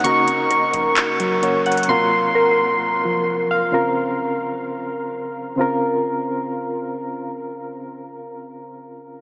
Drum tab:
HH |x---x---x---x---x---x---x---xxxx|--------------------------------|--------------------------------|--------------------------------|
CP |----------------x---------------|--------------------------------|--------------------------------|--------------------------------|
BD |------------o-------------------|--------------------------------|--------------------------------|--------------------------------|

HH |--------------------------------|
CP |--------------------------------|
BD |--------------------------------|